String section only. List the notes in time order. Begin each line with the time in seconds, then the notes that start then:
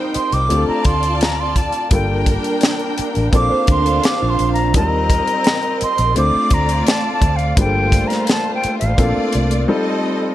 Already playing: D#4 C5 G5
0.49 F4 D5 A5
1.91 D4 A#4 G5
3.33 D4 C5 F5
4.74 C4 A#4 D#5
6.15 A3 F4 D5
7.57 A3 F4 C5
8.98 A3 F4 D5
9.68 C4 A4 D#5